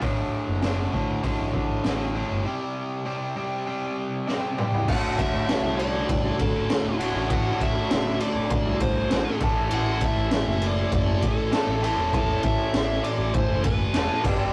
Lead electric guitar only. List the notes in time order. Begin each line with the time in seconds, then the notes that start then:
4.88 F#5
5.19 E5
5.78 D5
6.40 A4
7.33 F#5
7.62 E5
8.22 D5
8.81 C5
9.74 F#5
10.05 E5
10.67 D5
11.27 A4
12.14 A4
12.44 E5
13.04 D5
13.35 C5
13.64 B4